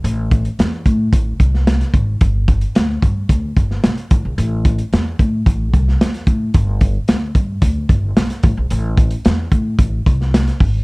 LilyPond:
<<
  \new Staff \with { instrumentName = "Upright bass" } { \clef bass \time 4/4 \key a \dorian \tempo 4 = 111 a,,4 e,8 a,8 a,,8 c,4 aes,,8 | g,,4 d,8 g,8 d,8 g,,8 b,,16 r16 a,,16 bes,,16 | a,,4 e,8 a,8 a,,8 c,8 e,8 a,8 | g,,4 d,8 g,8 d,8 g,,8 b,,16 r16 a,,16 bes,,16 |
a,,4 e,8 a,8 a,,8 c,4 aes,,8 | }
  \new DrumStaff \with { instrumentName = "Drums" } \drummode { \time 4/4 hh8 <hh bd>16 hh16 <hh sn>8 <hh bd>8 <hh bd>8 <hh bd>16 sn16 <hh sn>16 <hh sn>16 <hh bd>8 | <hh bd>8 <hh bd>16 hh16 <hh sn>8 <hh bd>8 <hh bd>8 <hh bd>16 sn16 <hh sn>16 hh16 <hh bd>8 | hh8 <hh bd>16 hh16 <hh sn>8 <hh bd>8 <hh bd>8 <hh bd>16 sn16 <hh sn>16 <hh sn>16 <hh bd>8 | <hh bd>8 <hh bd>8 <hh sn>8 <hh bd>8 <hh bd>8 <hh bd>8 <hh sn>16 <hh sn>16 <hh bd>8 |
hh8 <hh bd>16 hh16 <hh sn>8 <hh bd>8 <hh bd>8 <hh bd>16 sn16 <hh sn>16 <hh sn>16 <hho bd>8 | }
>>